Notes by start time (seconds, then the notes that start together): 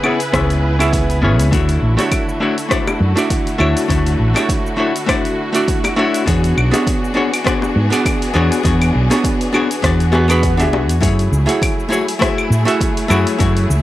Already playing: C#3 E4 G#4 B4
0.03 B3 C#4 E4 G#4 C#5, claves
0.20 open hi-hat, shaker
0.32 C#2 B3 C#4 E4 G#4 E5, kick, cross-stick, open hi-hat, shaker
0.50 open hi-hat, shaker
0.79 B3 C#4 E4 G#4 E5, open hi-hat, claves, shaker
0.93 kick, open hi-hat, shaker
1.10 open hi-hat, shaker
1.22 G#1 B3 C#4 E4 G#4 C#5
1.39 C#2, open hi-hat, shaker
1.51 D2 D3 A3 D4 E4 F#4 C#5, kick, open hi-hat, shaker
1.69 open hi-hat, shaker
1.82 A1
1.97 A3 D4 E4 F#4 C#5, open hi-hat, high bongo, shaker
2.12 kick, open hi-hat, claves, shaker
2.29 shaker
2.40 A3 D4 E4 F#4 C#5
2.58 open hi-hat, shaker
2.69 A3 D4 E4 F#4 D5, kick, cross-stick, open hi-hat, shaker
2.87 high bongo, claves, shaker
3.01 F#2
3.16 A3 D4 E4 F#4 D5, open hi-hat, shaker
3.30 kick, open hi-hat, shaker
3.47 open hi-hat, shaker
3.58 D2 A3 D4 E4 F#4 C#5, claves
3.77 open hi-hat, shaker
3.88 D2 A3 D4 E4 F#4 C#5, kick, open hi-hat, shaker
4.07 open hi-hat, shaker
4.19 A1
4.34 A3 D4 E4 F#4 C#5, open hi-hat, high bongo, claves, shaker
4.49 kick, open hi-hat, shaker
4.66 shaker
4.77 A3 D4 E4 F#4 C#5
4.96 open hi-hat, shaker
5.06 A3 D4 E4 F#4 D5, kick, cross-stick, open hi-hat, claves, shaker
5.25 open hi-hat, shaker
5.53 A3 D4 E4 F#4 D5, open hi-hat, shaker
5.68 kick, open hi-hat, shaker
5.84 open hi-hat, high bongo, claves, shaker
5.96 A3 D4 E4 F#4 C#5
6.14 open hi-hat, shaker
6.26 E2 E3 B3 D4 F#4 G#4 C#5, kick, open hi-hat, shaker
6.44 open hi-hat, shaker
6.57 B1, claves
6.71 B3 D4 F#4 G#4 C#5, open hi-hat, high bongo, shaker
6.87 kick, open hi-hat, shaker
7.05 shaker
7.14 B3 D4 F#4 G#4 C#5
7.34 open hi-hat, claves, shaker
7.44 B3 D4 F#4 G#4 D5, kick, cross-stick, open hi-hat, shaker
7.62 high bongo, shaker
7.76 G#2
7.90 B3 D4 F#4 G#4 D5, open hi-hat, shaker
8.06 kick, open hi-hat, claves, shaker
8.22 open hi-hat, shaker
8.34 E2 B3 D4 F#4 G#4 C#5
8.52 open hi-hat, shaker
8.63 E2 B3 D4 F#4 G#4 C#5, kick, open hi-hat, shaker
8.82 open hi-hat, claves, shaker
8.95 B1
9.10 B3 D4 F#4 G#4 C#5, open hi-hat, high bongo, shaker
9.24 kick, open hi-hat, shaker
9.41 open hi-hat, shaker
9.53 B3 D4 F#4 G#4 C#5, claves
9.71 open hi-hat, shaker
9.82 E2 B3 D4 F#4 G#4 D5, kick, cross-stick, open hi-hat, swell, shaker
10.00 open hi-hat, shaker
10.12 B3 D4 F#4 G#4 B4, high bongo
10.28 B3 D4 F#4 G#4 B4, open hi-hat, claves, shaker
10.43 kick, open hi-hat, shaker
10.57 B3 D4 F#4 G#4 E5, open hi-hat, high bongo, shaker
10.73 B1, high bongo
10.89 E2, open hi-hat, shaker
11.00 F#2 F#3 A3 E4 F#4 G#4 C#5, kick, open hi-hat, shaker
11.19 open hi-hat, shaker
11.32 C#2, shaker
11.46 A3 E4 F#4 G#4 C#5, open hi-hat, shaker
11.62 kick, open hi-hat, claves, shaker
11.80 shaker
11.89 A3 E4 F#4 G#4 C#5
11.93 shaker
12.08 open hi-hat, shaker
12.19 A3 E4 F#4 G#4 E5, kick, cross-stick, open hi-hat, shaker
12.38 claves, shaker
12.50 A2, shaker
12.65 A3 E4 F#4 G#4 E5, open hi-hat, shaker
12.81 kick, open hi-hat, shaker
12.97 open hi-hat, shaker
13.08 F#2 A3 E4 F#4 G#4 C#5, claves, shaker
13.27 open hi-hat, shaker
13.38 F#2 A3 E4 F#4 G#4 C#5, kick, open hi-hat, shaker
13.57 open hi-hat, shaker
13.70 C#2, shaker